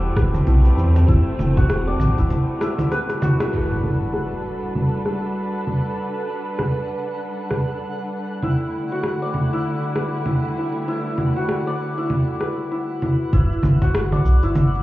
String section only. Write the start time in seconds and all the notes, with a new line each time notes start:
Already playing: G3 A3 C4
3.53 G3 D4 A4 B4
8.43 D3 G3 A3 E4